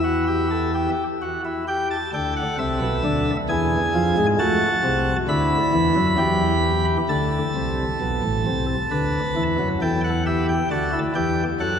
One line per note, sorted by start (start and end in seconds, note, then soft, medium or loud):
0.00 0.88 E2 medium
0.00 0.88 E3 medium
0.00 0.24 F#4 medium
0.00 0.90 E5 medium
0.28 0.48 G4 medium
0.51 0.71 A4 medium
0.75 1.03 G4 medium
1.22 1.41 F#4 medium
1.45 1.64 E4 medium
1.68 1.96 G4 medium
1.68 1.87 G5 medium
1.91 2.10 A5 medium
2.14 2.42 D2 medium
2.14 2.42 D3 medium
2.14 3.30 A4 medium
2.14 2.33 G5 medium
2.37 2.56 F#5 medium
2.59 2.78 C2 medium
2.59 2.78 C3 medium
2.59 3.37 E5 medium
2.82 3.01 B1 medium
2.82 3.01 B2 medium
3.04 3.32 D2 medium
3.04 3.32 D3 medium
3.49 3.77 E2 medium
3.49 3.77 E3 medium
3.49 4.26 G#4 medium
3.49 4.26 G#5 medium
3.95 4.14 F2 medium
3.95 4.14 F3 medium
4.17 4.36 G#2 medium
4.17 4.36 G#3 medium
4.39 4.67 A3 loud
4.39 5.16 F#4 medium
4.39 5.16 A5 medium
4.84 5.12 C2 medium
4.84 5.12 C3 medium
5.29 5.56 D2 loud
5.29 5.57 D3 medium
5.29 6.06 E4 medium
5.29 6.85 B5 medium
5.73 5.93 E2 medium
5.73 5.93 E3 medium
5.95 6.15 F#2 medium
5.95 6.15 F#3 medium
6.18 6.97 E2 medium
6.18 6.97 E3 medium
6.18 6.97 G4 medium
7.09 7.38 D2 medium
7.09 7.38 D3 medium
7.09 8.66 A4 medium
7.09 9.43 A5 medium
7.55 7.84 C2 medium
7.55 7.84 C3 medium
8.01 8.21 B1 medium
8.01 8.21 B2 medium
8.24 8.43 A1 medium
8.24 8.43 A2 medium
8.46 8.74 C2 medium
8.46 8.74 C3 medium
8.91 9.19 D2 medium
8.91 9.19 D3 medium
8.91 9.68 B4 medium
9.36 9.56 E2 medium
9.36 9.56 E3 medium
9.59 9.78 F#2 medium
9.59 9.78 F#3 medium
9.82 10.59 E2 medium
9.82 10.59 E3 medium
9.82 10.10 A4 medium
9.82 10.01 G5 medium
10.04 10.23 F#5 medium
10.26 10.54 G4 medium
10.26 10.45 E5 medium
10.49 10.68 G5 medium
10.71 10.99 D2 medium
10.71 10.99 D3 medium
10.71 10.90 F#4 medium
10.71 10.99 A5 medium
10.93 11.12 E4 medium
11.15 11.43 E2 medium
11.15 11.43 E3 medium
11.15 11.43 G4 medium
11.15 11.43 G5 medium
11.60 11.79 F#2 medium
11.60 11.79 F#3 medium
11.60 11.79 A4 medium
11.60 11.79 F#5 medium